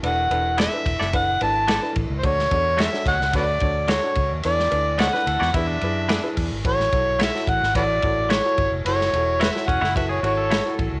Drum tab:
RD |x-x-x-x-x-x-x-x-|x-x-x-x-x-x-x-x-|x-x-x-x-x-x-x-x-|x-x-x-x-x-x-x-x-|
HH |----------------|----------------|--------------o-|----------------|
SD |----o--o----o---|-o--oo-o----o---|-o--oo-o----o---|-o--oo-o----o---|
BD |------o-o-----o-|o-o---o-o-o---o-|--------o-----o-|o-o---o-o-o---o-|

RD |x-x-x-x-x-x-x-x-|
HH |----------------|
SD |-o--oo-o----o---|
BD |------o-o-----o-|